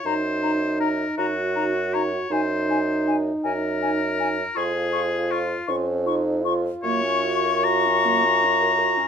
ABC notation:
X:1
M:6/8
L:1/16
Q:3/8=53
K:Db
V:1 name="Flute"
b2 b2 b2 b2 b2 b2 | a2 a2 a2 a2 a2 a2 | d'2 d'2 d'2 d'2 d'2 d'2 | [K:Gblyd] d'12 |]
V:2 name="Oboe"
c4 B2 G4 d2 | c4 z2 B6 | A4 F2 z6 | [K:Gblyd] d4 b8 |]
V:3 name="Clarinet"
E2 E2 E2 E2 E2 E2 | E2 E2 E2 E2 E2 E2 | F2 F2 F2 F2 F2 F2 | [K:Gblyd] B, D G B G D B, D G B G D |]
V:4 name="French horn"
E6 G6 | E8- E2 z2 | F6 D2 E2 F2- | [K:Gblyd] F12 |]
V:5 name="Bassoon" clef=bass
G,,6 G,,6 | G,,6 G,,6 | F,,6 F,,6 | [K:Gblyd] G,,12 |]